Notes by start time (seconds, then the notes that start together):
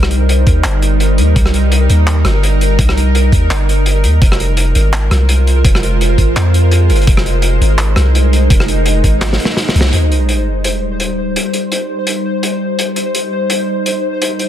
Already playing: C2 G3 D#4 A#4 C5
0.03 cross-stick
0.11 closed hi-hat
0.29 closed hi-hat
0.47 D#2, kick, closed hi-hat
0.64 G1, clap, closed hi-hat
0.82 closed hi-hat
1.00 closed hi-hat
1.18 D#2, closed hi-hat
1.36 C2 A#4, kick, closed hi-hat
1.46 cross-stick
1.54 closed hi-hat
1.72 closed hi-hat
1.90 D#2, closed hi-hat
2.07 clap, closed hi-hat
2.25 G1, cross-stick, closed hi-hat
2.43 closed hi-hat
2.61 closed hi-hat
2.79 C2, kick, closed hi-hat
2.89 cross-stick
2.97 closed hi-hat
3.15 closed hi-hat
3.32 D#2, kick, closed hi-hat
3.50 G1, clap, closed hi-hat
3.69 closed hi-hat
3.86 closed hi-hat
4.04 D#2, closed hi-hat
4.21 F1 G#3 F4 C5, kick, closed hi-hat
4.32 cross-stick
4.40 closed hi-hat
4.57 closed hi-hat
4.75 G#1, closed hi-hat
4.93 clap, closed hi-hat
5.11 C2, cross-stick, closed hi-hat
5.29 closed hi-hat
5.47 closed hi-hat
5.65 F1, kick, closed hi-hat
5.75 cross-stick
5.83 closed hi-hat
6.01 closed hi-hat
6.18 G#1, kick, closed hi-hat
6.36 F2, clap, closed hi-hat
6.54 closed hi-hat
6.71 closed hi-hat
6.90 G1, closed hi-hat
6.96 closed hi-hat
7.01 closed hi-hat
7.07 F1 D#4, kick, closed hi-hat
7.17 cross-stick
7.26 closed hi-hat
7.42 closed hi-hat
7.61 G#1, closed hi-hat
7.78 clap, closed hi-hat
7.96 C2, cross-stick, closed hi-hat
8.15 closed hi-hat
8.33 closed hi-hat
8.50 F1, kick, closed hi-hat
8.60 cross-stick
8.68 closed hi-hat
8.86 closed hi-hat
9.04 G#1, kick, closed hi-hat
9.21 snare, clap, closed hi-hat
9.33 snare
9.40 closed hi-hat
9.45 snare
9.57 snare, closed hi-hat
9.69 snare
9.75 C2, closed hi-hat
9.81 snare
9.93 G3 D#4 C5, closed hi-hat, sub drop
10.12 closed hi-hat
10.29 closed hi-hat
10.64 closed hi-hat
11.00 closed hi-hat
11.36 closed hi-hat
11.53 closed hi-hat
11.72 closed hi-hat
12.07 closed hi-hat
12.43 closed hi-hat
12.79 closed hi-hat
12.96 closed hi-hat
13.15 closed hi-hat
13.50 closed hi-hat
13.86 closed hi-hat
14.22 closed hi-hat
14.39 closed hi-hat